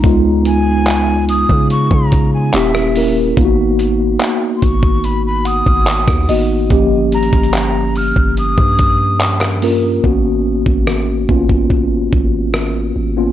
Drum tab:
HH |x---x---x---x---x---x---x---o---|x---x---x---x---x---x---x---o---|x---xxxxx---o---x---x---x---o---|--------------------------------|
CP |--------x---------------x-------|--------x---------------x-------|--------x---------------x-x-----|--------------------------------|
SD |--------------------------r-----|--------------------------r-----|--------------------------r-----|--------r---------------r-------|
BD |o-------------o---o-o-----------|o-----------o-o-------o---o-----|o-----o-------o---o-o-----------|o-----o-----o-o-o---o-----------|